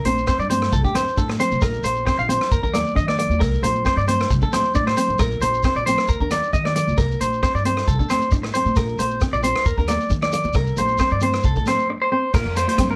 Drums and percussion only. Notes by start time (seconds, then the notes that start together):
0.05 closed hi-hat, high conga, shekere
0.18 shekere
0.27 kick, cross-stick, shekere
0.40 shekere
0.50 closed hi-hat, high conga, low conga, shekere
0.62 cross-stick, shekere
0.73 kick, shekere
0.84 kick, shekere
0.95 cross-stick, closed hi-hat, high conga, low conga, shekere
1.08 shekere
1.17 kick, shekere
1.29 cross-stick, high conga, shekere
1.39 closed hi-hat, low conga, shekere
1.51 high conga, shekere
1.61 kick, cross-stick, shekere
1.73 shekere
1.84 closed hi-hat, shekere
1.95 shekere
2.07 kick, cross-stick, shekere
2.19 shekere
2.29 closed hi-hat, high conga, low conga, shekere
2.41 cross-stick, shekere
2.52 kick, shekere
2.64 kick, shekere
2.74 cross-stick, closed hi-hat, high conga, low conga, shekere
2.86 shekere
2.96 kick, shekere
3.08 cross-stick, high conga, shekere
3.19 closed hi-hat, low conga, shekere
3.31 high conga, shekere
3.41 kick, cross-stick, shekere
3.53 shekere
3.64 closed hi-hat, high conga, low conga, shekere
3.75 shekere
3.86 kick, cross-stick, shekere
3.98 shekere
4.08 closed hi-hat, high conga, low conga, shekere
4.20 cross-stick, shekere
4.30 kick, shekere
4.42 kick, shekere
4.53 cross-stick, closed hi-hat, high conga, low conga, shekere
4.65 high conga, shekere
4.75 kick, high conga, shekere
4.87 cross-stick, high conga, shekere
4.97 closed hi-hat, low conga, shekere
5.09 low conga, shekere
5.19 kick, cross-stick, shekere
5.31 shekere
5.42 closed hi-hat, high conga, shekere
5.54 shekere
5.63 kick, cross-stick, shekere
5.75 shekere
5.87 closed hi-hat, high conga, low conga, shekere
5.98 cross-stick, shekere
6.08 kick, shekere
6.20 kick, shekere
6.31 cross-stick, closed hi-hat, high conga, low conga, shekere
6.43 shekere
6.53 kick, shekere
6.65 cross-stick, high conga, shekere
6.76 closed hi-hat, low conga, shekere
6.88 high conga, shekere
6.98 kick, cross-stick, shekere
7.11 shekere
7.21 closed hi-hat, high conga, shekere
7.33 shekere
7.43 kick, cross-stick, shekere
7.56 shekere
7.65 closed hi-hat, high conga, low conga, shekere
7.77 cross-stick, shekere
7.88 kick, shekere
7.99 kick, shekere
8.10 cross-stick, closed hi-hat, high conga, low conga, shekere
8.21 shekere
8.31 kick, shekere
8.43 cross-stick, shekere
8.54 closed hi-hat, low conga, shekere
8.66 high conga, shekere
8.76 kick, cross-stick, shekere
8.88 shekere
8.99 closed hi-hat, high conga, shekere
9.10 shekere
9.21 kick, cross-stick, shekere
9.33 shekere
9.43 closed hi-hat, high conga, shekere
9.56 cross-stick
9.66 kick, shekere
9.78 kick, shekere
9.88 cross-stick, closed hi-hat, high conga, low conga, shekere
10.01 shekere
10.10 kick, shekere
10.22 cross-stick, high conga, shekere
10.32 closed hi-hat, low conga, shekere
10.44 high conga, shekere
10.53 kick, cross-stick, shekere
10.66 shekere
10.77 closed hi-hat, high conga, low conga, shekere
10.88 shekere
10.98 kick, cross-stick, shekere
11.10 shekere
11.20 closed hi-hat, high conga, low conga, shekere
11.33 cross-stick, shekere
11.44 kick, shekere
11.56 kick, shekere
11.66 cross-stick, closed hi-hat, high conga, low conga, shekere
11.79 shekere
12.34 kick, cross-stick, crash, shekere
12.56 closed hi-hat, shekere
12.68 closed hi-hat, high conga
12.78 kick, cross-stick, closed hi-hat, low conga, shekere
12.90 high conga